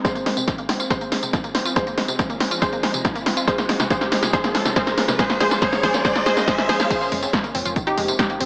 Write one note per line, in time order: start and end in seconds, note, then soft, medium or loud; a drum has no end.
0.00 3.44 G#3 medium
0.00 3.44 C4 medium
0.05 6.86 F3 medium
0.05 0.11 F3 medium
0.05 0.32 G#4 medium
0.05 0.32 C5 medium
0.05 kick loud
0.05 snare medium
0.05 closed hi-hat medium
0.05 tambourine medium
0.05 riser medium
0.15 0.25 A#3 medium
0.15 closed hi-hat soft
0.15 tambourine soft
0.26 0.41 G#1 loud
0.26 0.33 G#3 medium
0.26 snare medium
0.26 open hi-hat loud
0.37 0.44 C3 medium
0.37 closed hi-hat soft
0.37 tambourine medium
0.48 0.54 F3 medium
0.48 kick loud
0.48 snare medium
0.48 closed hi-hat medium
0.48 tambourine medium
0.58 0.65 A#3 medium
0.58 closed hi-hat soft
0.58 tambourine soft
0.69 0.76 G#1 medium
0.69 0.76 C4 medium
0.69 snare medium
0.69 open hi-hat loud
0.80 0.94 G#1 medium
0.80 0.86 F4 medium
0.80 closed hi-hat soft
0.80 tambourine medium
0.90 0.97 F3 medium
0.90 1.18 G#4 medium
0.90 1.18 C5 medium
0.90 kick loud
0.90 snare medium
0.90 closed hi-hat medium
0.90 tambourine medium
1.01 1.11 A#3 medium
1.01 closed hi-hat soft
1.01 tambourine soft
1.12 1.27 G#1 medium
1.12 1.19 G#3 medium
1.12 snare medium
1.12 open hi-hat loud
1.23 1.29 C3 medium
1.23 closed hi-hat soft
1.23 tambourine medium
1.33 1.40 F3 medium
1.33 kick loud
1.33 snare medium
1.33 closed hi-hat medium
1.33 tambourine medium
1.44 1.51 A#3 medium
1.44 closed hi-hat soft
1.44 tambourine soft
1.55 1.69 G#1 medium
1.55 1.61 C4 medium
1.55 snare medium
1.55 open hi-hat loud
1.65 1.72 F4 medium
1.65 closed hi-hat soft
1.65 tambourine medium
1.76 1.83 F3 medium
1.76 2.03 G#4 medium
1.76 2.03 C5 loud
1.76 kick loud
1.76 snare medium
1.76 closed hi-hat medium
1.76 tambourine medium
1.87 1.97 A#3 medium
1.87 closed hi-hat soft
1.87 tambourine soft
1.98 2.12 G#1 loud
1.98 2.04 G#3 medium
1.98 snare medium
1.98 open hi-hat medium
2.08 2.15 C3 medium
2.08 closed hi-hat soft
2.08 tambourine medium
2.19 2.26 F3 medium
2.19 kick loud
2.19 snare medium
2.19 closed hi-hat medium
2.19 tambourine medium
2.30 2.36 A#3 medium
2.30 closed hi-hat soft
2.30 tambourine soft
2.40 2.48 G#1 loud
2.40 2.47 C4 medium
2.40 snare medium
2.40 open hi-hat loud
2.51 2.66 G#1 medium
2.51 2.58 F4 medium
2.51 closed hi-hat soft
2.51 tambourine medium
2.62 2.69 F3 medium
2.62 2.89 G#4 medium
2.62 2.89 C5 loud
2.62 2.89 C5 medium
2.62 kick loud
2.62 snare medium
2.62 closed hi-hat medium
2.62 tambourine medium
2.73 2.83 A#3 medium
2.73 closed hi-hat soft
2.73 tambourine soft
2.83 2.98 G#1 medium
2.83 2.90 G#3 medium
2.83 snare medium
2.83 open hi-hat loud
2.94 3.01 C3 medium
2.94 closed hi-hat soft
2.94 tambourine medium
3.05 3.11 F3 medium
3.05 kick loud
3.05 snare medium
3.05 closed hi-hat medium
3.05 tambourine medium
3.15 3.22 A#3 medium
3.15 closed hi-hat soft
3.15 tambourine soft
3.26 3.41 G#1 medium
3.26 3.33 C4 medium
3.26 snare medium
3.26 open hi-hat loud
3.37 3.44 F4 medium
3.37 closed hi-hat soft
3.37 tambourine medium
3.48 3.54 F3 medium
3.48 6.87 A#3 medium
3.48 6.87 C#4 medium
3.48 3.75 G#4 medium
3.48 3.75 C5 loud
3.48 3.75 C5 medium
3.48 kick loud
3.48 snare medium
3.48 closed hi-hat medium
3.48 tambourine medium
3.58 3.68 A#3 medium
3.58 snare medium
3.58 closed hi-hat soft
3.58 tambourine soft
3.69 3.84 A#1 loud
3.69 3.76 G#3 medium
3.69 snare medium
3.69 open hi-hat loud
3.80 3.86 C3 medium
3.80 snare medium
3.80 closed hi-hat soft
3.80 tambourine medium
3.90 3.97 F3 medium
3.90 4.18 G#4 medium
3.90 4.18 C5 medium
3.90 4.18 C5 loud
3.90 kick loud
3.90 snare medium
3.90 closed hi-hat medium
3.90 tambourine medium
4.01 4.11 A#3 medium
4.01 snare medium
4.01 closed hi-hat soft
4.01 tambourine soft
4.12 4.19 A#1 loud
4.12 4.19 G#3 medium
4.12 snare loud
4.12 open hi-hat loud
4.23 4.37 A#1 medium
4.23 4.29 C3 medium
4.23 snare medium
4.23 closed hi-hat soft
4.23 tambourine medium
4.33 4.40 F3 medium
4.33 4.61 G#4 medium
4.33 4.61 C5 loud
4.33 kick loud
4.33 snare medium
4.33 closed hi-hat loud
4.44 4.54 A#3 medium
4.44 snare medium
4.44 closed hi-hat soft
4.44 tambourine soft
4.55 4.69 A#1 medium
4.55 4.61 G#3 medium
4.55 snare loud
4.55 open hi-hat loud
4.65 4.72 C3 medium
4.65 snare medium
4.65 closed hi-hat soft
4.65 tambourine medium
4.76 4.83 F3 medium
4.76 5.03 G#4 medium
4.76 5.03 C5 loud
4.76 kick loud
4.76 snare loud
4.76 closed hi-hat loud
4.76 tambourine medium
4.87 4.97 A#3 medium
4.87 snare medium
4.87 closed hi-hat soft
4.87 tambourine soft
4.98 5.12 G#1 medium
4.98 5.04 G#3 medium
4.98 snare loud
4.98 open hi-hat loud
5.08 5.15 C3 medium
5.08 snare medium
5.08 closed hi-hat soft
5.08 tambourine medium
5.19 5.26 F3 medium
5.19 5.39 G#4 medium
5.19 5.39 C5 loud
5.19 kick loud
5.19 snare loud
5.19 closed hi-hat medium
5.19 tambourine medium
5.30 5.39 A#3 medium
5.30 snare medium
5.30 closed hi-hat soft
5.30 tambourine soft
5.40 5.55 A#1 loud
5.40 5.47 F3 medium
5.40 5.60 G#4 medium
5.40 5.60 C5 loud
5.40 snare loud
5.40 open hi-hat loud
5.51 5.60 A#3 medium
5.51 snare loud
5.51 closed hi-hat soft
5.51 tambourine medium
5.62 5.69 F3 medium
5.62 5.82 G#4 medium
5.62 5.82 C5 loud
5.62 kick loud
5.62 snare loud
5.62 closed hi-hat medium
5.62 tambourine medium
5.73 5.82 A#3 medium
5.73 snare medium
5.73 closed hi-hat soft
5.73 tambourine soft
5.83 5.91 A#1 loud
5.83 5.90 F3 medium
5.83 6.03 G#4 medium
5.83 6.03 C5 loud
5.83 kick medium
5.83 snare loud
5.83 open hi-hat loud
5.94 6.09 A#1 medium
5.94 6.03 A#3 medium
5.94 snare medium
5.94 closed hi-hat soft
5.94 tambourine medium
6.05 6.11 F3 medium
6.05 6.25 G#4 medium
6.05 6.25 C5 loud
6.05 kick loud
6.05 snare loud
6.05 closed hi-hat loud
6.05 tambourine medium
6.15 6.25 A#3 medium
6.15 snare loud
6.15 closed hi-hat soft
6.15 tambourine soft
6.26 6.33 F3 medium
6.26 6.46 G#4 medium
6.26 6.46 C5 loud
6.26 snare loud
6.26 open hi-hat loud
6.37 6.46 A#3 medium
6.37 snare medium
6.37 closed hi-hat soft
6.37 tambourine medium
6.48 6.54 F3 medium
6.48 6.67 G#4 medium
6.48 6.67 C5 loud
6.48 kick loud
6.48 snare loud
6.48 closed hi-hat medium
6.48 tambourine medium
6.58 6.67 A#3 medium
6.58 snare loud
6.58 closed hi-hat soft
6.58 tambourine soft
6.69 6.76 F3 medium
6.69 6.89 G#4 medium
6.69 6.89 C5 loud
6.69 snare loud
6.69 open hi-hat loud
6.80 6.89 A#3 medium
6.80 snare loud
6.80 tambourine medium
6.90 6.97 F3 medium
6.90 8.45 F3 medium
6.90 8.45 G#3 medium
6.90 8.45 C4 medium
6.90 7.18 G#4 medium
6.90 7.18 C5 loud
6.90 kick loud
6.90 closed hi-hat medium
6.90 crash loud
6.90 tambourine soft
7.01 7.11 A#3 medium
7.01 closed hi-hat soft
7.01 tambourine soft
7.12 7.27 F1 loud
7.12 7.19 G#3 medium
7.12 open hi-hat loud
7.23 7.29 C3 medium
7.23 closed hi-hat soft
7.23 tambourine medium
7.33 7.40 F3 loud
7.33 kick loud
7.33 snare loud
7.33 closed hi-hat medium
7.33 tambourine soft
7.44 7.51 A#3 medium
7.44 closed hi-hat soft
7.44 tambourine soft
7.55 7.62 F1 loud
7.55 7.61 C4 medium
7.55 open hi-hat loud
7.65 7.80 F1 medium
7.65 7.72 F4 medium
7.65 closed hi-hat soft
7.65 tambourine medium
7.76 7.83 D#3 medium
7.76 kick loud
7.76 closed hi-hat medium
7.76 tambourine medium
7.87 7.97 C3 medium
7.87 8.07 D#4 medium
7.87 8.07 G4 medium
7.87 closed hi-hat soft
7.87 tambourine soft
7.98 8.12 F1 medium
7.98 8.04 G#3 medium
7.98 open hi-hat loud
8.08 8.15 C3 medium
8.08 closed hi-hat soft
8.08 tambourine medium
8.19 8.26 F3 loud
8.19 8.39 D#4 medium
8.19 8.39 G4 loud
8.19 8.39 G4 medium
8.19 kick loud
8.19 snare loud
8.19 closed hi-hat loud
8.19 tambourine medium
8.30 8.36 A#3 medium
8.30 closed hi-hat soft
8.30 tambourine soft
8.40 8.45 F1 medium
8.40 8.45 C4 medium
8.40 open hi-hat loud